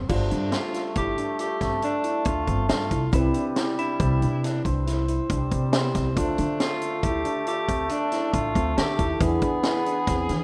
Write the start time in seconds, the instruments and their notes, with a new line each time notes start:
Already playing: tenor saxophone C4
0.09 upright bass G1, grand piano G3 D4 F4 C5, trombone A3, tenor saxophone D4, tine electric piano F4, kick, crash, shaker
0.31 upright bass G2, tine electric piano D4, closed hi-hat
0.52 tine electric piano F4, tenor saxophone F4, snare, closed hi-hat
0.74 tine electric piano F4, snare, closed hi-hat
0.95 upright bass G1, tine electric piano E4, tenor saxophone G4, kick, closed hi-hat
1.18 tine electric piano D4, closed hi-hat
1.39 tine electric piano F4, tenor saxophone G4, closed hi-hat
1.61 upright bass G1, tine electric piano C4, kick, snare, closed hi-hat, shaker
1.82 tine electric piano D4, tenor saxophone D4, closed hi-hat
2.04 tine electric piano E4, closed hi-hat
2.25 upright bass D2, tine electric piano D4, tenor saxophone F4, kick, closed hi-hat
2.47 upright bass G1, tine electric piano C4, kick, closed hi-hat
2.69 upright bass G2, tine electric piano D4, tenor saxophone F4, snare, closed hi-hat, shaker
2.91 upright bass C2, tine electric piano E4, kick, closed hi-hat
3.12 upright bass C2, grand piano C3 C4 E4 B4, trombone G3, tenor saxophone E4, tine electric piano E4, kick, closed hi-hat, shaker
3.34 tine electric piano D4, closed hi-hat
3.56 tine electric piano E4, snare, closed hi-hat
3.79 tine electric piano D4, tenor saxophone E4, closed hi-hat
4.00 upright bass C2, tine electric piano C4, kick, closed hi-hat
4.22 upright bass C3, tine electric piano D4, closed hi-hat
4.44 tenor saxophone D4, tine electric piano E4, snare, closed hi-hat
4.64 upright bass C2, tenor saxophone C4, tine electric piano D4, kick, closed hi-hat, shaker
4.87 tine electric piano E4, snare, closed hi-hat
5.08 tine electric piano E4, closed hi-hat
5.30 upright bass C2, trombone G3, tine electric piano D4, kick, closed hi-hat
5.51 upright bass C3, tine electric piano C4, kick, closed hi-hat
5.73 grand piano C3 C4 E4 G4, tine electric piano B3, tenor saxophone C4, snare, closed hi-hat, shaker
5.95 upright bass C2, tine electric piano C4, kick, snare, closed hi-hat
6.15 upright bass D2, grand piano D3 D4 F4 C5, trombone A3, tenor saxophone D4, tine electric piano F4, kick, closed hi-hat, shaker
6.38 upright bass D3, tine electric piano D4, closed hi-hat
6.60 tenor saxophone F4, tine electric piano F4, snare, closed hi-hat
6.82 tine electric piano F4, closed hi-hat
7.03 upright bass D2, tine electric piano E4, tenor saxophone G4, kick, closed hi-hat
7.25 tine electric piano D4, closed hi-hat
7.47 tine electric piano F4, tenor saxophone G4, closed hi-hat
7.69 upright bass D2, tine electric piano C4, kick, closed hi-hat, shaker
7.89 tenor saxophone D4, tine electric piano D4, closed hi-hat
8.12 tine electric piano E4, snare, closed hi-hat
8.33 upright bass A1, tine electric piano D4, tenor saxophone F4, kick, closed hi-hat
8.55 upright bass D2, tine electric piano C4, kick, closed hi-hat
8.77 upright bass D3, tine electric piano D4, tenor saxophone G4, snare, closed hi-hat, shaker
8.99 upright bass D#2, tine electric piano E4, kick, closed hi-hat
9.19 upright bass E2, grand piano E3 B3 D4 G#4, trombone B3, tine electric piano E4, tenor saxophone G#4, kick, closed hi-hat, shaker
9.42 tine electric piano D4, kick, closed hi-hat, shaker
9.63 tine electric piano E4, snare, closed hi-hat, shaker
9.86 tine electric piano D4, closed hi-hat
10.07 upright bass E2, tine electric piano C4, kick, snare, closed hi-hat, shaker
10.29 upright bass E3, tine electric piano D4, snare, closed hi-hat